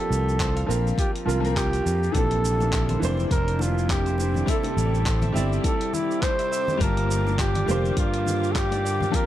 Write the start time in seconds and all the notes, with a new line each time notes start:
Already playing: F3 A#3 C4 F4 G4 A4 A#4 D5
0.11 C2, shaker
0.29 shaker
0.39 C5, kick, clap, closed hi-hat, shaker
0.56 F5, closed hi-hat
0.67 A#1 F3 A#3 C4 A#4 F5, shaker
0.87 shaker
0.98 F4 G4, kick, closed hi-hat, shaker
1.16 closed hi-hat
1.26 C2 F3 A#3 C4 F4 A#4, shaker
1.40 F3 A#3 C4
1.45 A#4, closed hi-hat, shaker
1.55 F4 G4, kick, clap, closed hi-hat, shaker
1.73 G4, closed hi-hat, shaker
1.86 F2 F4, shaker
2.03 shaker
2.12 A#1 C3 E3 A#3 C4 D4 E4 A4 D5 D6, kick, closed hi-hat, high bongo, shaker
2.17 A4
2.31 closed hi-hat
2.45 shaker
2.60 high bongo, shaker
2.73 A#4, kick, clap, closed hi-hat, shaker
2.89 C5, closed hi-hat, high conga
2.99 F1 E3 C4 D4 C5, low conga, shaker
3.05 C5
3.17 high bongo, shaker
3.31 F1 E4 A#4, kick, closed hi-hat, shaker
3.48 closed hi-hat
3.59 F4, high bongo, high conga, shaker
3.78 shaker
3.89 G4 A#4, kick, clap, closed hi-hat, shaker
4.06 C5, closed hi-hat, shaker
4.18 C5, high bongo, shaker
4.34 high conga, low conga, shaker
4.46 G3 C4 E4 G4 A4, kick, closed hi-hat, shaker
4.51 A4
4.63 closed hi-hat, high bongo
4.77 A1, shaker
4.94 shaker
5.06 C5, kick, clap, closed hi-hat, shaker
5.22 E5, closed hi-hat, high bongo, high conga
5.32 G1 G3 C4 E4 E5, low conga, shaker
5.37 D5
5.53 shaker
5.64 E4 A4, kick, closed hi-hat, high bongo, shaker
5.81 closed hi-hat
5.93 E4, high conga, shaker
6.11 shaker
6.22 C5, kick, clap, closed hi-hat, high bongo, shaker
6.39 E5, closed hi-hat, shaker
6.52 E5, shaker
6.68 high bongo, high conga, shaker
6.77 G1 G3 A#3 F4 A#4, kick, closed hi-hat
6.82 D3 F4 A5, shaker
6.97 closed hi-hat
7.11 shaker
7.27 high bongo, shaker
7.39 G4 A#4, kick, clap, closed hi-hat, shaker
7.55 D5, closed hi-hat, high conga
7.66 F1 G3 A#3 F4 D5, high bongo, low conga, shaker
7.71 C5
7.85 shaker
7.97 G2 F4, kick, closed hi-hat, shaker
8.14 closed hi-hat
8.26 high bongo, high conga, shaker
8.43 shaker
8.52 A4 A#4, kick, clap, closed hi-hat
8.56 G4, shaker
8.72 D5, closed hi-hat, high bongo, shaker
8.84 D5, shaker
9.01 high conga, low conga, shaker
9.12 F3 G3 A#3 C4 F4 A#4, kick, closed hi-hat, shaker
9.16 C3 A#3 G4